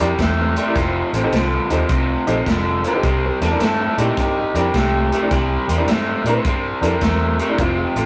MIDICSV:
0, 0, Header, 1, 6, 480
1, 0, Start_track
1, 0, Tempo, 568720
1, 641, Time_signature, 4, 2, 24, 8
1, 6800, End_track
2, 0, Start_track
2, 0, Title_t, "Clean electric guitar"
2, 0, Program_c, 0, 27
2, 14, Note_on_c, 0, 67, 83
2, 176, Note_off_c, 0, 67, 0
2, 176, Note_on_c, 0, 64, 72
2, 324, Note_off_c, 0, 64, 0
2, 349, Note_on_c, 0, 60, 82
2, 1266, Note_off_c, 0, 60, 0
2, 2423, Note_on_c, 0, 67, 70
2, 2427, Note_on_c, 0, 72, 72
2, 2568, Note_off_c, 0, 72, 0
2, 2572, Note_off_c, 0, 67, 0
2, 2585, Note_on_c, 0, 67, 63
2, 2590, Note_on_c, 0, 72, 78
2, 2722, Note_off_c, 0, 67, 0
2, 2731, Note_off_c, 0, 72, 0
2, 2746, Note_on_c, 0, 67, 66
2, 2753, Note_on_c, 0, 72, 81
2, 2883, Note_off_c, 0, 67, 0
2, 2887, Note_on_c, 0, 64, 70
2, 2892, Note_off_c, 0, 72, 0
2, 2895, Note_on_c, 0, 69, 78
2, 3032, Note_off_c, 0, 64, 0
2, 3043, Note_off_c, 0, 69, 0
2, 3060, Note_on_c, 0, 64, 75
2, 3065, Note_on_c, 0, 69, 82
2, 3200, Note_off_c, 0, 64, 0
2, 3207, Note_off_c, 0, 69, 0
2, 3218, Note_on_c, 0, 64, 68
2, 3225, Note_on_c, 0, 69, 79
2, 3359, Note_off_c, 0, 64, 0
2, 3368, Note_off_c, 0, 69, 0
2, 3377, Note_on_c, 0, 63, 72
2, 3386, Note_on_c, 0, 67, 90
2, 3518, Note_off_c, 0, 63, 0
2, 3529, Note_off_c, 0, 67, 0
2, 3537, Note_on_c, 0, 63, 69
2, 3543, Note_on_c, 0, 67, 82
2, 3678, Note_off_c, 0, 63, 0
2, 3687, Note_off_c, 0, 67, 0
2, 3694, Note_on_c, 0, 63, 63
2, 3699, Note_on_c, 0, 67, 68
2, 3836, Note_off_c, 0, 63, 0
2, 3845, Note_off_c, 0, 67, 0
2, 3854, Note_on_c, 0, 67, 100
2, 4779, Note_off_c, 0, 67, 0
2, 5307, Note_on_c, 0, 72, 96
2, 5776, Note_off_c, 0, 72, 0
2, 5776, Note_on_c, 0, 70, 80
2, 6391, Note_off_c, 0, 70, 0
2, 6412, Note_on_c, 0, 65, 80
2, 6570, Note_off_c, 0, 65, 0
2, 6570, Note_on_c, 0, 67, 70
2, 6800, Note_off_c, 0, 67, 0
2, 6800, End_track
3, 0, Start_track
3, 0, Title_t, "Upright piano"
3, 0, Program_c, 1, 0
3, 1, Note_on_c, 1, 74, 79
3, 81, Note_off_c, 1, 74, 0
3, 484, Note_on_c, 1, 70, 41
3, 489, Note_on_c, 1, 74, 50
3, 522, Note_off_c, 1, 70, 0
3, 524, Note_off_c, 1, 74, 0
3, 568, Note_on_c, 1, 67, 63
3, 571, Note_on_c, 1, 64, 69
3, 572, Note_on_c, 1, 70, 58
3, 575, Note_on_c, 1, 74, 65
3, 644, Note_off_c, 1, 67, 0
3, 646, Note_off_c, 1, 64, 0
3, 647, Note_off_c, 1, 70, 0
3, 648, Note_off_c, 1, 74, 0
3, 964, Note_on_c, 1, 69, 42
3, 968, Note_on_c, 1, 72, 48
3, 1001, Note_off_c, 1, 69, 0
3, 1004, Note_off_c, 1, 72, 0
3, 1042, Note_on_c, 1, 63, 73
3, 1044, Note_on_c, 1, 67, 68
3, 1048, Note_on_c, 1, 69, 74
3, 1049, Note_on_c, 1, 72, 88
3, 1121, Note_off_c, 1, 63, 0
3, 1122, Note_off_c, 1, 67, 0
3, 1124, Note_off_c, 1, 69, 0
3, 1125, Note_off_c, 1, 72, 0
3, 1436, Note_on_c, 1, 63, 75
3, 1439, Note_on_c, 1, 67, 74
3, 1442, Note_on_c, 1, 69, 72
3, 1444, Note_on_c, 1, 72, 83
3, 1518, Note_off_c, 1, 63, 0
3, 1520, Note_off_c, 1, 67, 0
3, 1521, Note_off_c, 1, 69, 0
3, 1522, Note_off_c, 1, 72, 0
3, 1914, Note_on_c, 1, 63, 83
3, 1916, Note_on_c, 1, 67, 83
3, 1924, Note_on_c, 1, 69, 74
3, 1925, Note_on_c, 1, 72, 89
3, 1997, Note_off_c, 1, 63, 0
3, 1998, Note_off_c, 1, 67, 0
3, 2002, Note_off_c, 1, 69, 0
3, 2002, Note_off_c, 1, 72, 0
3, 2392, Note_on_c, 1, 69, 46
3, 2399, Note_on_c, 1, 72, 44
3, 2436, Note_off_c, 1, 69, 0
3, 2439, Note_off_c, 1, 72, 0
3, 2479, Note_on_c, 1, 63, 69
3, 2484, Note_on_c, 1, 67, 66
3, 2487, Note_on_c, 1, 72, 74
3, 2488, Note_on_c, 1, 69, 65
3, 2560, Note_off_c, 1, 63, 0
3, 2562, Note_off_c, 1, 67, 0
3, 2564, Note_off_c, 1, 69, 0
3, 2564, Note_off_c, 1, 72, 0
3, 2879, Note_on_c, 1, 67, 38
3, 2889, Note_on_c, 1, 70, 48
3, 2919, Note_off_c, 1, 67, 0
3, 2924, Note_off_c, 1, 70, 0
3, 2961, Note_on_c, 1, 62, 69
3, 2963, Note_on_c, 1, 64, 59
3, 2964, Note_on_c, 1, 67, 58
3, 2968, Note_on_c, 1, 70, 77
3, 3041, Note_off_c, 1, 62, 0
3, 3042, Note_off_c, 1, 64, 0
3, 3042, Note_off_c, 1, 67, 0
3, 3044, Note_off_c, 1, 70, 0
3, 3357, Note_on_c, 1, 62, 61
3, 3359, Note_on_c, 1, 64, 63
3, 3362, Note_on_c, 1, 67, 62
3, 3365, Note_on_c, 1, 70, 70
3, 3439, Note_off_c, 1, 62, 0
3, 3440, Note_off_c, 1, 64, 0
3, 3441, Note_off_c, 1, 67, 0
3, 3443, Note_off_c, 1, 70, 0
3, 3836, Note_on_c, 1, 62, 75
3, 3838, Note_on_c, 1, 64, 64
3, 3842, Note_on_c, 1, 67, 65
3, 3842, Note_on_c, 1, 70, 83
3, 3918, Note_off_c, 1, 62, 0
3, 3919, Note_off_c, 1, 64, 0
3, 3921, Note_off_c, 1, 67, 0
3, 3921, Note_off_c, 1, 70, 0
3, 4321, Note_on_c, 1, 67, 44
3, 4324, Note_on_c, 1, 70, 50
3, 4361, Note_off_c, 1, 67, 0
3, 4362, Note_off_c, 1, 70, 0
3, 4407, Note_on_c, 1, 62, 65
3, 4408, Note_on_c, 1, 64, 60
3, 4410, Note_on_c, 1, 67, 63
3, 4414, Note_on_c, 1, 70, 66
3, 4484, Note_off_c, 1, 62, 0
3, 4485, Note_off_c, 1, 64, 0
3, 4486, Note_off_c, 1, 67, 0
3, 4488, Note_off_c, 1, 70, 0
3, 4795, Note_on_c, 1, 67, 53
3, 4802, Note_on_c, 1, 70, 50
3, 4838, Note_off_c, 1, 67, 0
3, 4841, Note_off_c, 1, 70, 0
3, 4875, Note_on_c, 1, 62, 80
3, 4878, Note_on_c, 1, 67, 72
3, 4880, Note_on_c, 1, 64, 66
3, 4882, Note_on_c, 1, 70, 83
3, 4958, Note_off_c, 1, 62, 0
3, 4960, Note_off_c, 1, 67, 0
3, 4961, Note_off_c, 1, 64, 0
3, 4962, Note_off_c, 1, 70, 0
3, 5279, Note_on_c, 1, 62, 69
3, 5283, Note_on_c, 1, 64, 59
3, 5285, Note_on_c, 1, 67, 56
3, 5286, Note_on_c, 1, 70, 75
3, 5361, Note_off_c, 1, 62, 0
3, 5363, Note_off_c, 1, 64, 0
3, 5363, Note_off_c, 1, 67, 0
3, 5364, Note_off_c, 1, 70, 0
3, 5749, Note_on_c, 1, 62, 63
3, 5752, Note_on_c, 1, 64, 61
3, 5752, Note_on_c, 1, 67, 66
3, 5759, Note_on_c, 1, 69, 80
3, 5836, Note_off_c, 1, 62, 0
3, 5837, Note_off_c, 1, 64, 0
3, 5837, Note_off_c, 1, 67, 0
3, 5840, Note_off_c, 1, 69, 0
3, 6244, Note_on_c, 1, 67, 45
3, 6248, Note_on_c, 1, 70, 47
3, 6283, Note_off_c, 1, 67, 0
3, 6285, Note_off_c, 1, 70, 0
3, 6322, Note_on_c, 1, 62, 63
3, 6323, Note_on_c, 1, 64, 63
3, 6326, Note_on_c, 1, 67, 57
3, 6328, Note_on_c, 1, 70, 75
3, 6403, Note_off_c, 1, 62, 0
3, 6403, Note_off_c, 1, 64, 0
3, 6405, Note_off_c, 1, 67, 0
3, 6406, Note_off_c, 1, 70, 0
3, 6716, Note_on_c, 1, 67, 41
3, 6723, Note_on_c, 1, 69, 48
3, 6759, Note_off_c, 1, 67, 0
3, 6763, Note_off_c, 1, 69, 0
3, 6800, End_track
4, 0, Start_track
4, 0, Title_t, "Overdriven electric guitar"
4, 0, Program_c, 2, 29
4, 0, Note_on_c, 2, 48, 57
4, 6, Note_on_c, 2, 55, 78
4, 145, Note_off_c, 2, 48, 0
4, 148, Note_off_c, 2, 55, 0
4, 161, Note_on_c, 2, 48, 78
4, 166, Note_on_c, 2, 57, 91
4, 448, Note_off_c, 2, 48, 0
4, 450, Note_off_c, 2, 57, 0
4, 480, Note_on_c, 2, 48, 70
4, 484, Note_on_c, 2, 57, 74
4, 625, Note_off_c, 2, 48, 0
4, 627, Note_off_c, 2, 57, 0
4, 640, Note_on_c, 2, 41, 83
4, 645, Note_on_c, 2, 48, 86
4, 927, Note_off_c, 2, 41, 0
4, 929, Note_off_c, 2, 48, 0
4, 960, Note_on_c, 2, 41, 68
4, 966, Note_on_c, 2, 48, 78
4, 1104, Note_off_c, 2, 41, 0
4, 1107, Note_off_c, 2, 48, 0
4, 1122, Note_on_c, 2, 41, 77
4, 1126, Note_on_c, 2, 50, 91
4, 1408, Note_off_c, 2, 41, 0
4, 1410, Note_off_c, 2, 50, 0
4, 1438, Note_on_c, 2, 41, 73
4, 1443, Note_on_c, 2, 50, 82
4, 1583, Note_off_c, 2, 41, 0
4, 1586, Note_off_c, 2, 50, 0
4, 1603, Note_on_c, 2, 41, 66
4, 1606, Note_on_c, 2, 48, 92
4, 1888, Note_off_c, 2, 41, 0
4, 1890, Note_off_c, 2, 48, 0
4, 1917, Note_on_c, 2, 41, 67
4, 1920, Note_on_c, 2, 48, 72
4, 2063, Note_off_c, 2, 41, 0
4, 2064, Note_off_c, 2, 48, 0
4, 2084, Note_on_c, 2, 41, 77
4, 2088, Note_on_c, 2, 50, 102
4, 2369, Note_off_c, 2, 41, 0
4, 2371, Note_off_c, 2, 50, 0
4, 2404, Note_on_c, 2, 41, 71
4, 2411, Note_on_c, 2, 50, 74
4, 2546, Note_off_c, 2, 41, 0
4, 2550, Note_off_c, 2, 50, 0
4, 2560, Note_on_c, 2, 48, 80
4, 2564, Note_on_c, 2, 55, 94
4, 2847, Note_off_c, 2, 48, 0
4, 2849, Note_off_c, 2, 55, 0
4, 2882, Note_on_c, 2, 48, 69
4, 2887, Note_on_c, 2, 55, 82
4, 3025, Note_off_c, 2, 48, 0
4, 3028, Note_off_c, 2, 55, 0
4, 3043, Note_on_c, 2, 48, 84
4, 3048, Note_on_c, 2, 57, 89
4, 3328, Note_off_c, 2, 48, 0
4, 3331, Note_off_c, 2, 57, 0
4, 3360, Note_on_c, 2, 48, 76
4, 3364, Note_on_c, 2, 57, 84
4, 3505, Note_off_c, 2, 48, 0
4, 3507, Note_off_c, 2, 57, 0
4, 3518, Note_on_c, 2, 48, 72
4, 3522, Note_on_c, 2, 55, 78
4, 3806, Note_off_c, 2, 48, 0
4, 3808, Note_off_c, 2, 55, 0
4, 3839, Note_on_c, 2, 48, 66
4, 3845, Note_on_c, 2, 55, 71
4, 3984, Note_off_c, 2, 48, 0
4, 3987, Note_off_c, 2, 55, 0
4, 4001, Note_on_c, 2, 48, 84
4, 4007, Note_on_c, 2, 57, 90
4, 4288, Note_off_c, 2, 48, 0
4, 4291, Note_off_c, 2, 57, 0
4, 4324, Note_on_c, 2, 48, 71
4, 4327, Note_on_c, 2, 57, 75
4, 4467, Note_off_c, 2, 48, 0
4, 4468, Note_off_c, 2, 57, 0
4, 4481, Note_on_c, 2, 48, 87
4, 4484, Note_on_c, 2, 55, 95
4, 4768, Note_off_c, 2, 48, 0
4, 4770, Note_off_c, 2, 55, 0
4, 4804, Note_on_c, 2, 48, 72
4, 4806, Note_on_c, 2, 55, 70
4, 4947, Note_off_c, 2, 48, 0
4, 4948, Note_off_c, 2, 55, 0
4, 4964, Note_on_c, 2, 48, 81
4, 4968, Note_on_c, 2, 57, 89
4, 5250, Note_off_c, 2, 48, 0
4, 5252, Note_off_c, 2, 57, 0
4, 5285, Note_on_c, 2, 48, 78
4, 5288, Note_on_c, 2, 57, 80
4, 5428, Note_off_c, 2, 48, 0
4, 5429, Note_off_c, 2, 57, 0
4, 5447, Note_on_c, 2, 48, 75
4, 5451, Note_on_c, 2, 55, 76
4, 5732, Note_off_c, 2, 48, 0
4, 5734, Note_off_c, 2, 55, 0
4, 5763, Note_on_c, 2, 48, 67
4, 5766, Note_on_c, 2, 55, 71
4, 5907, Note_off_c, 2, 48, 0
4, 5909, Note_off_c, 2, 55, 0
4, 5921, Note_on_c, 2, 48, 82
4, 5927, Note_on_c, 2, 57, 88
4, 6209, Note_off_c, 2, 48, 0
4, 6212, Note_off_c, 2, 57, 0
4, 6243, Note_on_c, 2, 48, 65
4, 6247, Note_on_c, 2, 57, 66
4, 6388, Note_off_c, 2, 48, 0
4, 6390, Note_off_c, 2, 57, 0
4, 6407, Note_on_c, 2, 41, 70
4, 6409, Note_on_c, 2, 48, 90
4, 6692, Note_off_c, 2, 41, 0
4, 6693, Note_off_c, 2, 48, 0
4, 6720, Note_on_c, 2, 41, 66
4, 6726, Note_on_c, 2, 48, 78
4, 6800, Note_off_c, 2, 41, 0
4, 6800, Note_off_c, 2, 48, 0
4, 6800, End_track
5, 0, Start_track
5, 0, Title_t, "Fingered electric bass"
5, 0, Program_c, 3, 33
5, 0, Note_on_c, 3, 41, 87
5, 101, Note_off_c, 3, 41, 0
5, 157, Note_on_c, 3, 40, 78
5, 462, Note_off_c, 3, 40, 0
5, 639, Note_on_c, 3, 29, 92
5, 841, Note_off_c, 3, 29, 0
5, 954, Note_on_c, 3, 33, 78
5, 1057, Note_off_c, 3, 33, 0
5, 1118, Note_on_c, 3, 36, 82
5, 1320, Note_off_c, 3, 36, 0
5, 1437, Note_on_c, 3, 39, 73
5, 1540, Note_off_c, 3, 39, 0
5, 1598, Note_on_c, 3, 36, 78
5, 1800, Note_off_c, 3, 36, 0
5, 1921, Note_on_c, 3, 34, 84
5, 2022, Note_off_c, 3, 34, 0
5, 2079, Note_on_c, 3, 29, 84
5, 2383, Note_off_c, 3, 29, 0
5, 2561, Note_on_c, 3, 36, 90
5, 2762, Note_off_c, 3, 36, 0
5, 2876, Note_on_c, 3, 40, 91
5, 2979, Note_off_c, 3, 40, 0
5, 3038, Note_on_c, 3, 43, 81
5, 3240, Note_off_c, 3, 43, 0
5, 3355, Note_on_c, 3, 46, 82
5, 3458, Note_off_c, 3, 46, 0
5, 3520, Note_on_c, 3, 43, 77
5, 3722, Note_off_c, 3, 43, 0
5, 3835, Note_on_c, 3, 41, 88
5, 3939, Note_off_c, 3, 41, 0
5, 4001, Note_on_c, 3, 36, 80
5, 4305, Note_off_c, 3, 36, 0
5, 4480, Note_on_c, 3, 36, 87
5, 4682, Note_off_c, 3, 36, 0
5, 4793, Note_on_c, 3, 40, 83
5, 4897, Note_off_c, 3, 40, 0
5, 4949, Note_on_c, 3, 43, 92
5, 5155, Note_off_c, 3, 43, 0
5, 5270, Note_on_c, 3, 46, 69
5, 5375, Note_off_c, 3, 46, 0
5, 5444, Note_on_c, 3, 43, 72
5, 5645, Note_off_c, 3, 43, 0
5, 5752, Note_on_c, 3, 41, 93
5, 5857, Note_off_c, 3, 41, 0
5, 5920, Note_on_c, 3, 40, 89
5, 6225, Note_off_c, 3, 40, 0
5, 6400, Note_on_c, 3, 29, 87
5, 6603, Note_off_c, 3, 29, 0
5, 6716, Note_on_c, 3, 33, 83
5, 6800, Note_off_c, 3, 33, 0
5, 6800, End_track
6, 0, Start_track
6, 0, Title_t, "Drums"
6, 158, Note_on_c, 9, 36, 71
6, 160, Note_on_c, 9, 42, 88
6, 173, Note_on_c, 9, 38, 99
6, 243, Note_off_c, 9, 36, 0
6, 244, Note_off_c, 9, 42, 0
6, 257, Note_off_c, 9, 38, 0
6, 476, Note_on_c, 9, 42, 64
6, 560, Note_off_c, 9, 42, 0
6, 637, Note_on_c, 9, 42, 77
6, 639, Note_on_c, 9, 36, 98
6, 651, Note_on_c, 9, 38, 33
6, 722, Note_off_c, 9, 42, 0
6, 723, Note_off_c, 9, 36, 0
6, 735, Note_off_c, 9, 38, 0
6, 959, Note_on_c, 9, 42, 62
6, 1044, Note_off_c, 9, 42, 0
6, 1118, Note_on_c, 9, 42, 81
6, 1132, Note_on_c, 9, 38, 93
6, 1203, Note_off_c, 9, 42, 0
6, 1216, Note_off_c, 9, 38, 0
6, 1437, Note_on_c, 9, 42, 58
6, 1521, Note_off_c, 9, 42, 0
6, 1596, Note_on_c, 9, 42, 82
6, 1598, Note_on_c, 9, 36, 115
6, 1680, Note_off_c, 9, 42, 0
6, 1683, Note_off_c, 9, 36, 0
6, 1918, Note_on_c, 9, 42, 60
6, 2002, Note_off_c, 9, 42, 0
6, 2080, Note_on_c, 9, 36, 77
6, 2081, Note_on_c, 9, 42, 83
6, 2095, Note_on_c, 9, 38, 102
6, 2164, Note_off_c, 9, 36, 0
6, 2165, Note_off_c, 9, 42, 0
6, 2179, Note_off_c, 9, 38, 0
6, 2399, Note_on_c, 9, 42, 60
6, 2483, Note_off_c, 9, 42, 0
6, 2560, Note_on_c, 9, 42, 78
6, 2561, Note_on_c, 9, 36, 104
6, 2645, Note_off_c, 9, 36, 0
6, 2645, Note_off_c, 9, 42, 0
6, 2883, Note_on_c, 9, 42, 58
6, 2897, Note_on_c, 9, 38, 30
6, 2968, Note_off_c, 9, 42, 0
6, 2981, Note_off_c, 9, 38, 0
6, 3040, Note_on_c, 9, 42, 79
6, 3053, Note_on_c, 9, 38, 102
6, 3124, Note_off_c, 9, 42, 0
6, 3138, Note_off_c, 9, 38, 0
6, 3361, Note_on_c, 9, 42, 64
6, 3446, Note_off_c, 9, 42, 0
6, 3522, Note_on_c, 9, 36, 108
6, 3522, Note_on_c, 9, 42, 79
6, 3535, Note_on_c, 9, 38, 32
6, 3606, Note_off_c, 9, 42, 0
6, 3607, Note_off_c, 9, 36, 0
6, 3620, Note_off_c, 9, 38, 0
6, 3843, Note_on_c, 9, 42, 71
6, 3927, Note_off_c, 9, 42, 0
6, 4001, Note_on_c, 9, 42, 88
6, 4002, Note_on_c, 9, 36, 73
6, 4015, Note_on_c, 9, 38, 95
6, 4086, Note_off_c, 9, 42, 0
6, 4087, Note_off_c, 9, 36, 0
6, 4099, Note_off_c, 9, 38, 0
6, 4323, Note_on_c, 9, 42, 72
6, 4408, Note_off_c, 9, 42, 0
6, 4481, Note_on_c, 9, 42, 81
6, 4483, Note_on_c, 9, 36, 104
6, 4495, Note_on_c, 9, 38, 32
6, 4566, Note_off_c, 9, 42, 0
6, 4567, Note_off_c, 9, 36, 0
6, 4579, Note_off_c, 9, 38, 0
6, 4803, Note_on_c, 9, 42, 65
6, 4887, Note_off_c, 9, 42, 0
6, 4961, Note_on_c, 9, 42, 78
6, 4974, Note_on_c, 9, 38, 102
6, 5045, Note_off_c, 9, 42, 0
6, 5059, Note_off_c, 9, 38, 0
6, 5281, Note_on_c, 9, 42, 60
6, 5365, Note_off_c, 9, 42, 0
6, 5442, Note_on_c, 9, 42, 85
6, 5443, Note_on_c, 9, 36, 119
6, 5527, Note_off_c, 9, 36, 0
6, 5527, Note_off_c, 9, 42, 0
6, 5762, Note_on_c, 9, 42, 59
6, 5846, Note_off_c, 9, 42, 0
6, 5918, Note_on_c, 9, 42, 75
6, 5921, Note_on_c, 9, 36, 75
6, 5931, Note_on_c, 9, 38, 101
6, 6002, Note_off_c, 9, 42, 0
6, 6006, Note_off_c, 9, 36, 0
6, 6016, Note_off_c, 9, 38, 0
6, 6240, Note_on_c, 9, 42, 63
6, 6324, Note_off_c, 9, 42, 0
6, 6399, Note_on_c, 9, 42, 73
6, 6402, Note_on_c, 9, 36, 105
6, 6484, Note_off_c, 9, 42, 0
6, 6486, Note_off_c, 9, 36, 0
6, 6719, Note_on_c, 9, 42, 56
6, 6800, Note_off_c, 9, 42, 0
6, 6800, End_track
0, 0, End_of_file